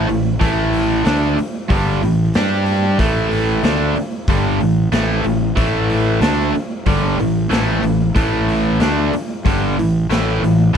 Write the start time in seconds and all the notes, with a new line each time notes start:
0.09 A1 A2 E3, open hi-hat
0.40 A1 A2 E3 A3, kick, open hi-hat
0.73 open hi-hat
1.05 D2 D3 A3 D4, snare, open hi-hat
1.37 muted overdriven electric guitar stroke, muted fingered electric bass stroke, open hi-hat
1.69 G1 G2 D3 G3, kick, open hi-hat
2.03 A1 A2 E3, open hi-hat
2.34 G2 G3 D4 G4, snare, open hi-hat
2.66 open hi-hat
2.98 A1 A2 E3 A3, kick, open hi-hat
3.31 open hi-hat
3.63 D2 D3 A3 D4, snare, open hi-hat
3.96 muted fingered electric bass stroke, muted overdriven electric guitar stroke, open hi-hat
4.28 G1 G2 D3 G3, kick, open hi-hat
4.60 A1 A2 E3, open hi-hat
4.92 A1 A2 E3 A3, snare, open hi-hat
5.24 A1 A2 E3, open hi-hat
5.56 A1 A2 E3 A3, kick, open hi-hat
5.89 open hi-hat
6.21 D2 D3 A3 D4, snare, open hi-hat
6.54 muted overdriven electric guitar stroke, muted fingered electric bass stroke, open hi-hat
6.86 G1 G2 D3 G3, kick, open hi-hat
7.17 A1 A2 E3, open hi-hat
7.50 A1 A2 E3 A3, snare, open hi-hat
7.82 A1 A2 E3, open hi-hat
8.15 A1 A2 E3 A3, kick, open hi-hat
8.48 open hi-hat
8.80 D2 D3 A3 D4, snare, open hi-hat
9.13 muted fingered electric bass stroke, muted overdriven electric guitar stroke, open hi-hat
9.45 G1 G2 D3 G3, kick, open hi-hat
9.78 A1 A2 E3, open hi-hat
10.10 A1 A2 E3 A3, snare, open hi-hat
10.42 A1 A2 E3, open hi-hat
10.74 A2